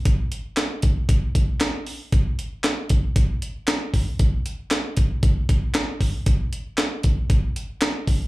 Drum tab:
HH |xxxxxxxo|xxxxxxxo|xxxxxxxo|xxxxxxxo|
CP |--x---x-|--x---x-|--x---x-|--x---x-|
SD |--o---o-|--o---o-|--o---o-|--o---o-|
BD |o--ooo--|o--oo--o|o--ooo-o|o--oo--o|